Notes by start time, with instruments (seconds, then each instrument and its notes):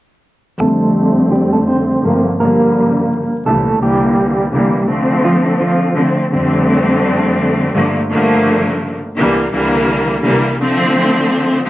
0.60 string section F2 D3 G3 A3 C4, clean electric guitar A3 A4
1.32 clean electric guitar G3 G4
1.53 clean electric guitar A3 A4
1.67 clean electric guitar C4 C5
2.02 string section G2 D3 F3 A3 A#3
2.40 string section G2 D3 F3 G3 A#3, clean electric guitar A#3 A#4
3.46 string section C2 A#2 D3 E3 G3, clean electric guitar A3 A4
3.79 string section C2 D3 E3 G3 A#3, clean electric guitar G3 G4
4.51 string section C2 D3 E3 G3 A#3
4.87 string section D3 F3 A3 C4
5.24 clean electric guitar F3 F4
5.61 clean electric guitar F3 F4
5.95 string section D3 F3 A3 C4
6.31 string section F2 D3 G3 A3 C4
7.73 string section G2 D3 F3 A3 A#3
8.12 string section G2 D3 F3 A3 A#3
9.17 string section C2 D3 E3 G3 A#3
9.51 string section C2 D3 E3 G3 A#3
10.22 string section C2 D3 E3 G3 A#3
10.59 string section D3 F3 A3 C4
11.66 string section D3